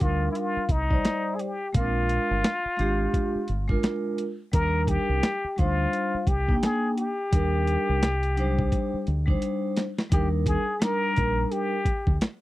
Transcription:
0.00 D2 G3 D4 D#4 F4 A#4, kick, closed hi-hat
0.31 E4, closed hi-hat
0.36 F4
0.57 muted fingered electric bass stroke
0.69 C2 D#4, kick, closed hi-hat
0.89 G3 D#4 C5 D5, kick
1.05 snare, closed hi-hat
1.35 G#4
1.39 G4, closed hi-hat
1.73 A#1 G#3 C4 F4 A#4, kick, closed hi-hat
1.80 D4
2.09 closed hi-hat
2.31 G1
2.44 snare, closed hi-hat
2.65 muted fingered electric bass stroke
2.77 G#1 G#3 D4 F4 G4, closed hi-hat
3.14 kick, closed hi-hat
3.35 muted fingered electric bass stroke
3.48 G1, closed hi-hat
3.67 G#3 D4 F4 A#4, kick
3.83 snare, closed hi-hat
4.18 closed hi-hat
4.52 D#2 G3 D4 D#4 A#4, kick, closed hi-hat
4.87 G4, kick, closed hi-hat
5.09 C2
5.23 snare, closed hi-hat
5.44 muted fingered electric bass stroke
5.56 D2 G3 D4 D#4 F4 C5, kick, closed hi-hat
5.93 closed hi-hat
6.14 muted fingered electric bass stroke
6.27 C2 G4, kick, closed hi-hat
6.47 A#3 D4 D#4 G5, kick
6.63 G#4, snare, closed hi-hat
6.97 G4, closed hi-hat
7.31 D#2 G3 D4 D#4 A#4, kick, closed hi-hat
7.67 closed hi-hat
7.89 C2
8.03 snare, closed hi-hat
8.23 closed hi-hat
8.35 F#3 D4 D#4 C5, closed hi-hat
8.42 G3
8.59 kick
8.72 kick, closed hi-hat
8.94 muted fingered electric bass stroke
9.07 D2, closed hi-hat
9.26 G3 D4 D#4, kick
9.30 C5
9.42 closed hi-hat
9.76 snare, closed hi-hat
9.98 snare
10.10 D#2 G3 D4 D#4 G4, kick, closed hi-hat
10.14 A#4
10.46 G#4, kick, closed hi-hat
10.79 G3 D4 D#4 A#4, snare, closed hi-hat
10.84 A#4
11.16 A#1, kick, closed hi-hat
11.51 G4, closed hi-hat
11.85 kick, closed hi-hat
12.07 D2, kick
12.21 snare, closed hi-hat

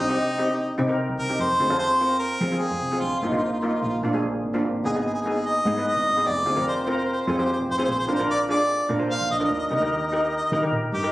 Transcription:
0.00 D#4
0.08 C2 C4 D#4 G4
0.38 C4 D#4 G4
0.78 C3 C4 D#4 G4
0.88 C4 D#4 A#4
1.09 C2
1.19 C2 A#4
1.29 C4 D#4 G4
1.39 F2 C5
1.60 D2 C4 F4 G#4
1.70 F2 C4 F4 G#4
1.79 C5
2.01 C4 F4 A#4
2.19 A#4
2.40 F3 C4 F4 G#4
2.52 C4 F4 G#4
2.58 G#4
2.71 F2
2.81 C2
2.92 C4 F4 G#4
3.01 A#1 F4
3.20 G1 A#3 D#4 F4
3.25 F4
3.29 A#1 A#3 D#4 F4
3.34 F4
3.44 F4
3.52 F4
3.60 A#3 D#4 F4
3.68 F4
3.75 F4
3.82 A#1 F4
3.89 F4
4.02 A#2 A#3 D4 F4
4.13 A#3 D4 G#4
4.23 A#1
4.43 G#1
4.54 A#3 D4 F4
4.64 G#1
4.84 F1 B3 D#4 G#4
4.93 G#1 B3 D#4 G#4
5.00 G#4
5.06 G#4
5.14 G#4
5.22 B3 D#4 G#4
5.27 G#4
5.46 D#5
5.65 G#2 B3 D#4 G#4
5.77 B3 D#4 B4
5.88 D#5
5.96 G#1
6.06 G#1
6.16 B3 D#4 G#4
6.26 F1 D5
6.46 D2 C4 F4 G#4
6.56 F1 C4 F4 A#4
6.68 C5
6.76 C5
6.84 C4 C5
6.88 F4 A#4 C5
6.98 C5
7.05 C5
7.13 C5
7.21 C5
7.27 F2 C4 F4 G#4 C5
7.38 C4 F4 G4 C5
7.45 C5
7.52 C5
7.58 F1
7.68 F1 C5
7.78 C4 F4 G#4 C5
7.84 A#1 C5
7.91 C5
7.99 C5
8.08 G#1 D4 F4 A#4 C5
8.15 C5
8.19 A#1 D4 F4 A#4
8.30 D5
8.49 D4 F4 G#4 D5
8.89 A#2 D4 F4 A#4
8.99 D4 F4 C5
9.11 F5
9.20 A#1
9.30 A#1 D#5
9.39 D4 F4 A#4 D#5
9.45 D#5
9.50 D#2 D#5
9.59 D#5
9.67 C2 D#4 G4 D#5
9.72 A#4 D#5
9.80 D#2 D#4 G4 A#4 D#5
9.92 D#5
9.98 D#5
10.07 D#5
10.12 D#4 G4 A#4 D#5
10.23 D#5
10.29 D#5
10.37 D#5
10.45 D#5
10.52 D#3 D#4 G4 A#4 D#5
10.62 D#4 G4 A#4
10.72 A#2
10.92 G2 G4
11.03 D#4 G4 A#4

